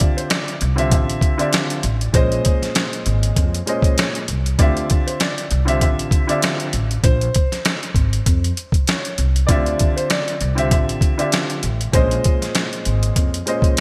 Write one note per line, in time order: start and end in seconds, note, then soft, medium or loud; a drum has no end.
0.00 0.54 D3 medium
0.00 0.55 C4 medium
0.00 0.55 F4 medium
0.00 0.55 G4 medium
0.00 0.13 D5 medium
0.00 0.56 E5 loud
0.00 kick medium
0.00 closed hi-hat medium
0.17 0.29 C5 medium
0.17 closed hi-hat medium
0.30 0.75 D5 medium
0.30 snare loud
0.30 closed hi-hat medium
0.48 closed hi-hat soft
0.61 0.92 C2 loud
0.61 closed hi-hat medium
0.76 1.33 D3 medium
0.76 1.33 C4 medium
0.76 1.33 F4 medium
0.76 1.34 G4 medium
0.76 0.90 C5 medium
0.76 1.34 E5 loud
0.76 closed hi-hat medium
0.92 1.15 A1 loud
0.92 1.37 E5 medium
0.92 kick medium
0.92 closed hi-hat loud
1.10 closed hi-hat medium
1.21 kick medium
1.21 closed hi-hat medium
1.38 1.79 D3 loud
1.38 1.79 C4 medium
1.38 1.80 F4 medium
1.38 1.80 G4 medium
1.38 1.51 D5 medium
1.38 1.81 E5 loud
1.38 closed hi-hat medium
1.53 snare loud
1.53 closed hi-hat medium
1.70 closed hi-hat medium
1.83 2.07 A1 medium
1.83 closed hi-hat medium
2.01 closed hi-hat soft
2.13 2.37 A#1 loud
2.13 3.56 A#2 medium
2.13 3.56 G#3 medium
2.13 3.56 C#4 medium
2.13 3.94 C5 loud
2.13 3.57 C5 medium
2.13 3.57 D#5 medium
2.13 kick loud
2.13 closed hi-hat loud
2.32 closed hi-hat soft
2.45 kick medium
2.45 closed hi-hat medium
2.62 snare soft
2.62 closed hi-hat medium
2.75 snare loud
2.75 closed hi-hat medium
2.93 closed hi-hat soft
3.06 3.29 G#1 medium
3.06 closed hi-hat medium
3.23 closed hi-hat medium
3.36 3.60 F2 loud
3.36 kick medium
3.36 closed hi-hat loud
3.54 closed hi-hat medium
3.66 4.23 A#2 medium
3.66 4.24 G#3 medium
3.66 4.24 C#4 medium
3.66 4.25 C5 medium
3.66 4.25 D#5 medium
3.66 closed hi-hat medium
3.82 kick loud
3.82 closed hi-hat medium
3.98 4.26 C#5 medium
3.98 snare loud
3.98 closed hi-hat loud
4.15 closed hi-hat medium
4.28 4.51 C2 medium
4.28 closed hi-hat medium
4.46 closed hi-hat soft
4.59 4.82 D2 loud
4.59 5.44 D3 medium
4.59 5.45 C4 medium
4.59 5.45 F4 medium
4.59 5.45 G4 medium
4.59 5.04 D5 medium
4.59 5.46 E5 loud
4.59 kick loud
4.59 closed hi-hat loud
4.77 closed hi-hat soft
4.90 kick medium
4.90 closed hi-hat medium
5.07 5.19 C5 medium
5.07 closed hi-hat medium
5.20 5.66 D5 medium
5.20 snare loud
5.20 closed hi-hat medium
5.38 closed hi-hat medium
5.51 5.82 C2 loud
5.51 closed hi-hat medium
5.65 6.22 D3 medium
5.65 6.23 C4 medium
5.65 6.23 F4 medium
5.65 6.23 G4 medium
5.65 5.80 C5 medium
5.65 6.24 E5 loud
5.65 closed hi-hat medium
5.81 6.05 A1 loud
5.81 6.27 E5 medium
5.81 kick medium
5.81 closed hi-hat loud
5.99 closed hi-hat medium
6.11 kick loud
6.11 closed hi-hat medium
6.27 6.69 D3 loud
6.27 6.69 C4 medium
6.27 6.69 F4 medium
6.27 6.70 G4 medium
6.27 6.41 D5 medium
6.27 6.70 E5 loud
6.27 closed hi-hat medium
6.42 snare loud
6.42 closed hi-hat loud
6.60 closed hi-hat medium
6.73 6.96 A1 medium
6.73 closed hi-hat medium
6.91 closed hi-hat soft
7.04 7.27 A#1 loud
7.04 8.83 C5 loud
7.04 kick loud
7.04 closed hi-hat loud
7.21 closed hi-hat medium
7.35 kick medium
7.35 closed hi-hat medium
7.52 snare soft
7.52 closed hi-hat medium
7.65 snare loud
7.65 closed hi-hat medium
7.83 closed hi-hat soft
7.95 8.18 G#1 medium
7.95 kick medium
7.95 closed hi-hat medium
8.13 closed hi-hat medium
8.26 8.49 F2 loud
8.26 kick medium
8.26 closed hi-hat loud
8.44 closed hi-hat medium
8.57 closed hi-hat medium
8.72 kick loud
8.72 closed hi-hat medium
8.87 9.15 C#5 medium
8.87 snare loud
8.87 closed hi-hat medium
9.05 closed hi-hat medium
9.18 9.41 C2 medium
9.18 closed hi-hat medium
9.36 closed hi-hat soft
9.47 9.72 D2 loud
9.47 10.34 D3 medium
9.47 10.34 C4 medium
9.47 10.35 F4 medium
9.47 9.93 D5 medium
9.47 kick loud
9.47 closed hi-hat loud
9.51 10.35 G4 medium
9.51 10.35 E5 loud
9.66 closed hi-hat soft
9.79 kick medium
9.79 closed hi-hat medium
9.96 10.08 C5 medium
9.96 closed hi-hat medium
10.10 10.55 D5 medium
10.10 snare loud
10.10 closed hi-hat medium
10.28 closed hi-hat soft
10.41 10.72 C2 medium
10.41 closed hi-hat medium
10.55 11.12 D3 medium
10.55 11.13 C4 medium
10.55 11.13 F4 medium
10.55 11.13 G4 medium
10.55 10.70 C5 medium
10.55 11.14 E5 loud
10.55 closed hi-hat medium
10.71 10.94 A1 loud
10.71 11.17 E5 medium
10.71 kick medium
10.71 closed hi-hat loud
10.89 closed hi-hat medium
11.01 kick loud
11.01 closed hi-hat medium
11.18 11.59 D3 loud
11.18 11.59 C4 medium
11.18 11.60 F4 medium
11.18 11.60 G4 medium
11.18 11.30 D5 medium
11.18 11.60 E5 loud
11.18 closed hi-hat medium
11.32 snare loud
11.32 closed hi-hat medium
11.50 closed hi-hat medium
11.63 11.86 A1 medium
11.63 closed hi-hat medium
11.81 closed hi-hat soft
11.92 12.17 A#1 loud
11.92 13.35 A#2 medium
11.92 13.36 G#3 medium
11.92 13.36 C#4 medium
11.92 13.73 C5 medium
11.92 13.36 C5 medium
11.92 13.37 D#5 medium
11.92 kick loud
11.92 closed hi-hat loud
12.11 closed hi-hat soft
12.24 kick medium
12.24 closed hi-hat medium
12.42 snare soft
12.42 closed hi-hat medium
12.55 snare loud
12.55 closed hi-hat medium
12.73 closed hi-hat soft
12.85 13.09 G#1 medium
12.85 closed hi-hat medium
13.03 closed hi-hat medium
13.16 13.39 F2 loud
13.16 kick medium
13.16 closed hi-hat loud
13.34 closed hi-hat medium
13.46 13.80 A#2 medium
13.46 13.80 G#3 medium
13.46 13.80 C#4 medium
13.46 13.80 C5 medium
13.46 13.80 D#5 medium
13.46 closed hi-hat medium
13.62 kick loud
13.62 closed hi-hat medium
13.77 closed hi-hat loud